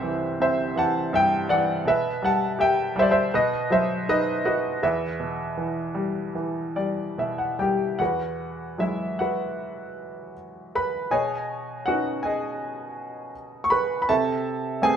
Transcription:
grand piano
Already playing: C2 G2 C3 G4 C5 D5 E5 F#5
0.03 E3
0.40 C3 C5 E5
0.76 E3 F#5 A5
1.13 G2 E5 G5
1.49 E3 D5 F#5
1.85 B2 B4 E5
2.22 G3 F#5 A5
2.59 G4 E5 G5
2.96 G3 C5 E5
3.02 D5
3.11 C5 E5
3.34 B2 B4 D#5
3.70 F#3 C5 E5
4.08 D#4 B4 D#5
4.45 F#4 B4 D#5
4.83 E2 B4 E5
5.20 B2
5.57 E3
5.95 G3
6.35 E3
6.76 G3 D5
7.18 B2 E5
7.38 F#5
7.59 G3 G4 G5
7.99 E2 F#4 B4 F#5
8.78 F#3 G#3 E4 E5
9.19 F#4 B4 F#5
10.75 B4 B5
11.11 B2 G#4 C#5 D#5 G#5
11.86 B3 C#4 D#4 F#4 F#5
12.23 G#4 D#5 G#5
13.64 C#6
13.70 B4 B5
14.02 B5
14.09 C3 A4 E5 A5
14.82 A3 B3 C4 G#4 G#5

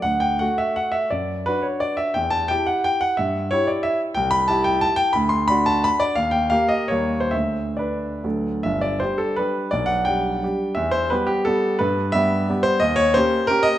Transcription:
grand piano
0.02 D2 F#5
0.20 G5
0.39 A3 F#4 F#5
0.58 E5
0.76 F#5
0.92 E5
1.10 F#2 D5
1.46 D4 F#4 B4
1.62 C#5
1.80 D5
1.97 E5
2.14 E2 G5
2.30 A5
2.48 E4 G4 G5
2.66 F#5
2.84 G5
3.01 F#5
3.17 G2 E5
3.51 E4 G4 C#5
3.67 D5
3.83 E5
4.14 C2 G5
4.31 B5
4.48 E4 G4 A5
4.64 G5
4.81 A5
4.96 G5
5.13 D2 B5
5.29 C6
5.48 D4 F#4 B5
5.66 A5
5.84 B5
6.00 D5
6.16 D#2 F5
6.31 G5
6.50 A#3 G4 F5
6.69 D#5
6.88 D#2 G3 A#3 A#4 C#5
7.20 C5
7.31 D2 E5
7.77 D4 B4 D5
8.24 D2 F#3 D4 A4
8.63 G1 E5
8.81 D5
9.00 G3 D4 G4 C5
9.18 A4
9.36 G3 D4 G4 B4
9.71 B1 D5
9.86 F#5
10.05 G3 D4 G4 G5
10.43 G3 D4 G4
10.75 E2 E5
10.91 C5
11.10 G3 B3 G4 B4
11.27 G4
11.45 G3 B3 G4 A4
11.79 G2 B4
12.12 G3 B3 G4 E5
12.49 G3 B3 G4
12.63 C5
12.80 D#2 D#5
12.96 C#5
13.14 A#3 C#4 G4 C5
13.47 A#3 C#4 G4 A#4
13.63 D#5

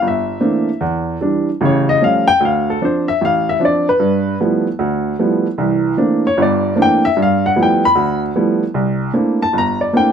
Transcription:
upright piano
0.02 G1
0.08 E5
0.41 E3 A3 A#3 C4 D4
0.81 E2
1.21 E3 G3 D4
1.61 A1 C#3
1.65 C#5
1.89 D#5
2.01 F3 G3 A3 C#4 F5
2.28 G5
2.40 D2
2.45 F5
2.70 A4
2.81 F3 C4 D4 C5
3.08 E5
3.21 A1 F5
3.49 E5
3.59 F3 C4 D4
3.65 D5
3.89 B4
4.00 G2
4.40 F3 G3 A3 B3 E4
4.79 D2
5.19 F3 G3 A3 B3 E4
5.58 C2 E3
5.97 E3 A3 A#3 C4 D4
6.27 C#5
6.37 G1 G2
6.42 D5
6.76 E3 A3 A#3 C4 D4
6.82 G5
7.05 E5
7.17 G2
7.22 F5
7.46 F#5
7.56 F3 G3 A3 B3 E4
7.63 G5
7.85 B5
7.95 D2
8.35 F3 G3 A3 B3 E4
8.74 C2
9.14 A3 A#3 C4 D4 E4
9.42 A5
9.53 G1
9.58 A#5
9.81 D5
9.93 A3 A#3 C4 D4 E4 G5

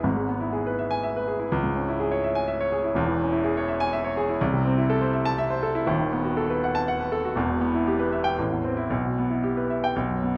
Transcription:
grand piano
0.03 G#1 G#2
0.17 G#3
0.29 B3
0.41 E4
0.53 G#4
0.67 B4
0.79 E5
0.91 G#5
1.03 E5
1.17 B4
1.28 G#4
1.39 E4
1.52 C#2
1.64 G#2
1.76 C#4
1.89 E4
2.00 G#4
2.11 C#5
2.24 E5
2.35 G#5
2.48 E5
2.60 C#5
2.72 G#4
2.84 E4
2.95 E1 E2
3.08 E3
3.21 C#4
3.32 E4
3.44 G#4
3.57 C#5
3.68 E5
3.80 G#5
3.93 E5
4.04 C#5
4.17 G#4
4.29 E4
4.41 C2
4.53 C3
4.65 C4
4.77 E4
4.90 A4
5.01 C5
5.13 E5
5.25 A5
5.38 E5
5.50 C5
5.63 A4
5.75 E4
5.86 D#1 D#2
5.99 D#3
6.12 B3
6.25 F#4
6.37 A4
6.50 B4
6.64 F#5
6.75 A5
6.88 F#5
7.00 B4
7.12 A4
7.25 F#4
7.36 E1 E2
7.50 B2
7.61 B3
7.75 E4
7.87 G4
7.99 B4
8.12 E5
8.24 G5
8.39 A1
8.52 E2
8.64 C4
8.77 E4
8.90 B1
9.04 B2
9.18 B3
9.30 E4
9.43 G4
9.57 B4
9.70 E5
9.84 G5
9.96 B1
10.10 F#2
10.23 B3

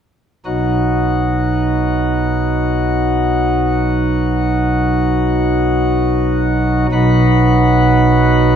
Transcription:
pipe organ
0.45 B1 B2 F#3 D#4 F#4
6.92 B1 B2 F#3 D#4 F#4 B4

